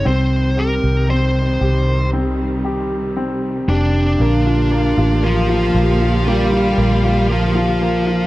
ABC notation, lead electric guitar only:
X:1
M:4/4
L:1/8
Q:1/4=58
K:Cphr
V:1 name="Lead electric guitar"
c B c2 z3 [=D=d]- | [K:Bb] [Dd]2 [F,F]2 [G,G]2 [F,F]2 |]